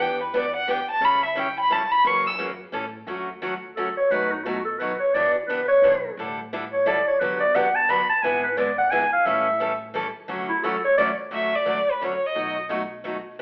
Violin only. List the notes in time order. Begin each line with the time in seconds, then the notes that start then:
0.01 G5
0.23 B4
0.36 D5
0.56 F#5
0.70 G5
0.91 A5
1.05 B5
1.25 E5
1.39 G5
1.60 B5
1.72 A5
1.91 B5
2.07 C#6
2.27 E6
11.35 E5
11.55 D5
11.91 B4
12.04 C#5
12.26 D#5